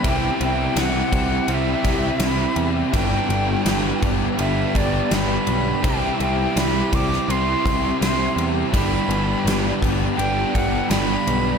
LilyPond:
<<
  \new Staff \with { instrumentName = "Flute" } { \time 4/4 \key g \major \tempo 4 = 83 g''8 g''8 fis''4 e''4 b''8 r8 | g''4. r8 e''8 d''8 b''4 | g''8 g''8 b''8 d'''8 c'''4 c'''8 r8 | b''4. r8 g''8 fis''8 b''4 | }
  \new Staff \with { instrumentName = "Clean electric guitar" } { \time 4/4 \key g \major e4 e4 e'8 g'8 e'4 | e8 b8 e8 b8 d'8 g'8 d'8 b8 | e4 e4 e'8 g'8 e'4 | e8 b8 e8 b8 d'8 g'8 d'8 b8 | }
  \new Staff \with { instrumentName = "Overdriven electric guitar" } { \time 4/4 \key g \major <c g c' e' g'>4. <c g c' e' g'>4. <c g c' e' g'>4 | <g, d g b d' g'>4. <g, d g b d' g'>4. <g, d g b d' g'>4 | <c g c' e' g'>4. <c g c' e' g'>4. <c g c' e' g'>4 | <g, d g b d' g'>4. <g, d g b d' g'>4. <g, d g b d' g'>4 | }
  \new Staff \with { instrumentName = "Overdriven electric guitar" } { \time 4/4 \key g \major <c g c' e' g'>2 <c g c' e' g'>2 | <g, d g b d' g'>2 <g, d g b d' g'>2 | <c g c' e' g'>2 <c g c' e' g'>2 | <g, d g b d' g'>2 <g, d g b d' g'>2 | }
  \new Staff \with { instrumentName = "Picked electric bass" } { \clef bass \time 4/4 \key g \major c,8 c,8 c,8 c,8 c,8 c,8 c,8 e,8 | g,,8 g,,8 g,,8 g,,8 g,,8 g,,8 g,,8 b,,8 | c,8 c,8 c,8 c,8 c,8 c,8 c,8 e,8 | g,,8 g,,8 g,,8 g,,8 g,,8 g,,8 g,,8 b,,8 | }
  \new DrumStaff \with { instrumentName = "Drums" } \drummode { \time 4/4 <bd cymr>8 cymr8 <cymr sn>8 <bd cymr>8 cymr8 <bd cymr>8 <cymr sn>8 cymr8 | <bd cymr>8 cymr8 <cymr sn>8 <bd cymr>8 cymr8 <bd cymr>8 <cymr sn>8 cymr8 | <bd cymr>8 cymr8 <cymr sn>8 <bd cymr>16 sn16 cymr8 <bd cymr>8 <cymr sn>8 cymr8 | <bd cymr>8 cymr8 <cymr sn>8 <bd cymr>8 cymr8 <bd cymr>8 <cymr sn>8 cymr8 | }
>>